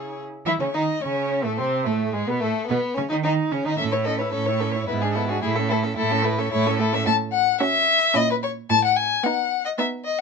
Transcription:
Already playing: cello C#3, viola E4, violin G#4 C#5
0.46 cello E3, viola E4, violin E4 E5
0.60 cello C#3, violin C#4 C#5, viola C#4
0.74 cello D#3, violin D#4 D#5, viola D#4
1.01 cello C#3, viola C#4, violin C#4 C#5
1.44 cello A2, violin A3 A4, viola A3
1.58 cello C3, viola C4, violin C4 C5
1.85 cello A2, violin A3 A4, viola A3
2.13 cello G#2, violin G#3 G#4, viola G#3
2.27 cello B2, violin B3 B4, viola B3
2.40 cello A2, violin A3 A4, viola A3
2.67 cello B2, violin B3 B4, viola B3
2.94 cello C#3, violin C#4 C#5, viola C#4
3.09 cello D#3, violin D#4 D#5, viola D#4
3.23 cello D#3, violin D#4 D#5, viola D#4
3.52 cello C#3, violin C#4 C#5, viola C#4
3.65 cello D#3, violin D#4 D#5, viola D#4
3.78 cello A2, viola C#4, violin A4 E5
3.92 viola E4, violin C#5
4.04 viola C#4, violin A4 D#5
4.19 viola E4, violin B4 C#5
4.32 cello A2, viola C#4, violin A4 C#5
4.46 viola E4, violin C#5
4.60 viola C#4, violin A4
4.72 violin C#5
4.76 viola E4
4.86 cello G#2, viola B3, violin E4 B4
5.02 viola D4, violin G#4
5.14 viola B3, violin E4 A4
5.28 viola D4, violin F#4 G#4
5.42 cello A2, viola A3, violin E4 G#4
5.56 viola C#4, violin A4
5.69 viola A3, violin E4 A4
5.83 viola C#4, violin A4
5.97 cello A2, viola A3, violin E4 A4
6.11 viola C#4, violin A4
6.25 viola A3, violin E4 B4
6.38 viola C#4, violin A4 C#5
6.51 cello A2, viola A3, violin E4 C#5
6.66 viola C#4, violin A4
6.78 viola A3, violin E4 A4
6.93 viola C#4, violin A4 E5
7.06 cello A2, violin A5
7.32 violin F#5
7.61 viola C#4, violin F#4 E5
8.14 cello A#2, viola C#4, violin E4 D#5
8.31 violin B4
8.43 violin C#5
8.70 cello A2, violin A5
8.85 violin F#5
8.97 violin G#5
9.23 viola B3, violin D#4 F#5
9.65 violin D#5
9.78 viola B3, violin D#4 E5
10.04 violin D#5

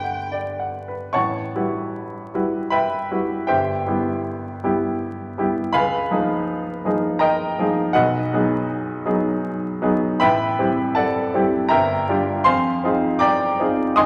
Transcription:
Already playing: grand piano G1 D2 D4 G4 B4, violin G5
0.04 grand piano F#5
0.32 grand piano D5
0.59 grand piano F#5
0.88 grand piano B4
1.13 grand piano A1 C#5 F#5 A5 C#6
1.55 grand piano G3 E4 F#4 B4
2.34 grand piano G3 E4 F#4 B4
2.70 grand piano B4 E5 G5 B5
3.11 grand piano G3 E4 F#4 B4
3.47 grand piano G1 G4 C5 E5 G5
3.87 grand piano G3 B3 E4 G4
4.64 grand piano G3 B3 E4 G4
5.38 grand piano G3 B3 E4 G4
5.73 grand piano C#2 B4 F5 G#5 B5
6.11 grand piano F3 A#3 D#4 G#4
6.85 grand piano F3 A#3 D#4 G#4
7.19 grand piano A#4 D#5 G5 A#5
7.59 grand piano F3 A#3 D#4 G#4
7.93 grand piano B1 F#4 B4 D#5 F#5
8.33 grand piano F#3 B3 D#4 G#4
9.05 grand piano F#3 B3 D#4 G#4
9.82 grand piano F#3 B3 D#4 G#4
10.20 grand piano A1 B4 E5 G5 B5
10.59 grand piano G3 C4 E4 G4
10.95 grand piano A4 D5 F#5 A5
11.34 grand piano G3 C4 E4 G4
11.69 grand piano G1 A#4 E5 G5 A#5
12.09 grand piano G3 D4 F4 G4
12.44 grand piano F2 C5 F5 G#5 C6
12.84 grand piano C4 D#4 F4 G#4
13.19 grand piano D5 G5 A#5 D6
13.59 grand piano C4 D#4 F4 G#4
13.96 grand piano D#2 D#5 G#5 C6 D#6

